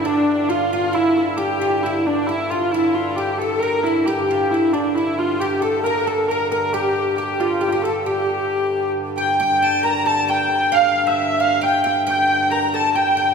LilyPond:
<<
  \new Staff \with { instrumentName = "Recorder" } { \time 3/4 \key g \dorian \tempo 4 = 135 d'4 f'4 e'8 e'8 | g'4 e'8 d'8 e'8 f'8 | e'4 g'8 a'8 bes'8 e'8 | g'4 e'8 d'8 e'8 r8 |
g'8 a'8 bes'8 a'8 bes'8 bes'8 | g'4 g'4 g'16 g'16 a'8 | g'2 r8 g''8 | g''8 a''8 bes''32 a''32 bes''16 a''8 g''4 |
f''8. e''4~ e''16 g''8 g''8 | g''4 bes''8 a''8 g''4 | }
  \new Staff \with { instrumentName = "Oud" } { \time 3/4 \key g \dorian d'4 f'8 f'8 e'4 | g'8 f'8 e'4 e'8 f'8 | e'4 g'8 a'8 bes'8 e'8 | g'8 f'8 e'8 d'8 e'4 |
g'8 a'8 bes'8 a'8 bes'8 bes'8 | g'4 g'8 f'8 g'16 g'16 a'8 | g'2 r8 g''8 | g''8 g''8 bes'8 a'8 g''4 |
f''8. e''8. f''8 g''8 g''8 | g''4 bes'8 a'8 g''8 g''8 | }
  \new Staff \with { instrumentName = "Hurdy-gurdy" } { \time 3/4 \key g \dorian d'4 f'4 e'8 e'8 | g'4 e'8 d'8 e'8 f'8 | e'8 f'8 g'8 a'8 bes'8 e'8 | g'4 e'8 d'8 e'8 f'8 |
g'8 a'8 bes'8 a'8 bes'8 bes'8 | g'4 g'8 f'8 g'32 f'32 g'16 a'8 | g'2 r8 g''8 | g''4 bes''8 a''8 g''4 |
f''8. e''8. f''8 g''8 g''8 | g''4 bes''8 a''8 g''4 | }
  \new Staff \with { instrumentName = "Harmonium" } { \clef bass \time 3/4 \key g \dorian <g, d>2.~ | <g, d>2.~ | <g, d>2. | <g, d>2.~ |
<g, d>2.~ | <g, d>2.~ | <g, d>2. | <g, d>2.~ |
<g, d>2.~ | <g, d>2. | }
>>